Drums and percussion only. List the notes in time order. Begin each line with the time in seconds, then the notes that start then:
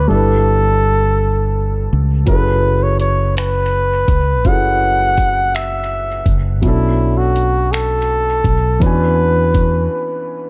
2.27 kick, closed hi-hat
3.00 closed hi-hat
3.37 finger snap, closed hi-hat
4.08 kick, closed hi-hat
4.45 kick, closed hi-hat
5.17 kick, closed hi-hat
5.55 finger snap, closed hi-hat
6.26 kick, closed hi-hat
6.63 kick, closed hi-hat
7.36 closed hi-hat
7.73 finger snap, closed hi-hat
8.44 kick, closed hi-hat
8.82 kick, closed hi-hat
9.54 kick, closed hi-hat